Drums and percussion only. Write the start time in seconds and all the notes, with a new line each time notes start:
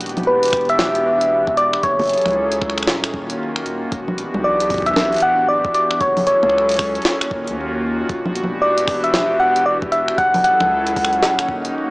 0.01 closed hi-hat
0.06 closed hi-hat
0.09 closed hi-hat
0.17 closed hi-hat, low conga
0.23 closed hi-hat
0.43 closed hi-hat
0.45 closed hi-hat
0.48 closed hi-hat
0.50 finger snap, kick, closed hi-hat
0.53 closed hi-hat, open hi-hat
0.57 closed hi-hat
0.61 closed hi-hat
0.65 closed hi-hat
0.69 closed hi-hat
0.79 snare, low conga
0.95 closed hi-hat
1.21 closed hi-hat
1.47 kick
1.57 closed hi-hat
1.73 finger snap
1.83 kick, closed hi-hat
1.99 open hi-hat, low conga
2.02 open hi-hat
2.04 open hi-hat
2.06 open hi-hat
2.07 closed hi-hat, open hi-hat
2.13 closed hi-hat
2.18 closed hi-hat
2.21 closed hi-hat
2.26 finger snap, closed hi-hat, low conga
2.28 closed hi-hat
2.31 closed hi-hat
2.33 closed hi-hat
2.52 closed hi-hat
2.62 finger snap, kick
2.70 finger snap
2.78 finger snap, closed hi-hat
2.83 finger snap
2.87 snare
3.04 finger snap, closed hi-hat
3.14 kick
3.30 closed hi-hat
3.56 finger snap
3.66 closed hi-hat
3.92 kick, closed hi-hat
4.08 low conga
4.18 closed hi-hat
4.34 low conga
4.60 closed hi-hat
4.70 kick, open hi-hat
4.74 kick
4.78 kick
4.82 kick
4.86 kick, closed hi-hat
4.89 kick
4.91 kick
4.94 kick, snare, low conga
5.12 closed hi-hat
5.14 closed hi-hat
5.16 closed hi-hat
5.18 closed hi-hat
5.20 closed hi-hat
5.65 kick
5.74 closed hi-hat
5.91 finger snap
6.01 kick, closed hi-hat
6.17 open hi-hat, low conga
6.27 closed hi-hat
6.43 finger snap, low conga
6.50 finger snap
6.58 finger snap
6.69 closed hi-hat
6.71 closed hi-hat
6.74 closed hi-hat
6.77 finger snap, kick, closed hi-hat, open hi-hat
6.95 closed hi-hat
7.02 snare, closed hi-hat
7.10 closed hi-hat
7.21 finger snap, closed hi-hat
7.31 kick
7.47 closed hi-hat
8.09 kick, closed hi-hat
8.26 low conga
8.36 closed hi-hat
8.44 low conga
8.78 closed hi-hat
8.88 finger snap, kick, open hi-hat
9.04 closed hi-hat
9.14 snare, low conga
9.56 closed hi-hat
9.82 kick
9.92 closed hi-hat
10.08 finger snap
10.18 kick, closed hi-hat
10.34 open hi-hat, low conga
10.44 closed hi-hat
10.60 finger snap, low conga
10.87 closed hi-hat
10.96 kick, open hi-hat
11.05 finger snap
11.13 closed hi-hat
11.23 snare
11.39 finger snap, closed hi-hat
11.49 kick
11.65 closed hi-hat